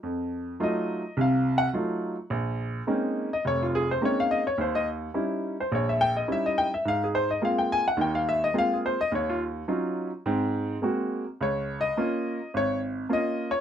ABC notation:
X:1
M:4/4
L:1/16
Q:"Swing" 1/4=106
K:Ebmix
V:1 name="Upright piano"
z4 e4 f2 _g2 z4 | z6 z e d F A c d f e d | c e z4 z c d _f g e f e g f | f A c e f g a _g =g f =e _e f A c e |
d F z12 z2 | d2 e6 d2 z2 e2 d2 |]
V:2 name="Upright piano"
F,,4 [_G,=A,EF]2 z2 [C,,C,]4 [G,A,EF]2 z2 | B,,,4 [A,B,CDE]2 z2 F,,,4 [A,B,CDE]2 z2 | E,,4 [G,DE_F]2 z2 B,,,4 [G,DEF]2 z2 | A,,4 [A,B,CF]2 z2 [E,,E,]4 [A,B,CF]2 z2 |
E,,4 [_G,DEF]2 z2 [A,,C]4 [A,B,C_G]2 z2 | D,,4 [B,DF]2 z2 A,,,4 [B,DF]2 z2 |]